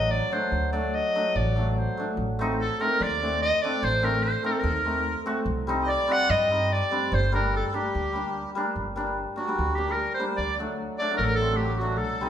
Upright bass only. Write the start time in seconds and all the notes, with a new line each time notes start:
Already playing: A1
0.52 D2
1.35 A1
2.17 A1
3.01 D#2
3.83 A1
4.64 D#2
5.46 C2
6.30 G2
7.12 G1
7.95 D2
8.76 G1
9.58 D2
10.38 D2
11.19 A1
11.99 C2